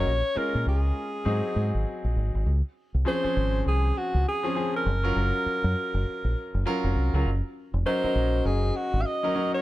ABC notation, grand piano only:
X:1
M:4/4
L:1/16
Q:"Swing 16ths" 1/4=100
K:Db
V:1 name="Grand piano"
z2 [A,DFB]6 [G,CEA]6 z2 | z4 [F,CDA] [F,CDA]6 z2 [F,CDA] [F,CDA]2 | z [G,DFB]6 z4 z [G,DFB]2 z [G,DFB] | z4 [G,DEB] [G,DEB]6 z2 [G,DEB] [G,DEB]2 |]